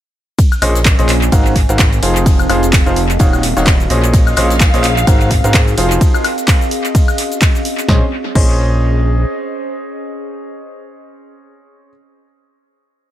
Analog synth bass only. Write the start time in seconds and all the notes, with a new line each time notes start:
0.62 A#1
0.99 A#1
1.32 G#1
1.69 G#1
2.03 F1
2.50 F1
2.86 F1
3.20 D#1
3.57 D#1
3.90 A#1
4.37 A#1
4.74 A#1
5.07 G#1
5.44 G#2
5.78 F1
7.89 A#1
8.35 A#1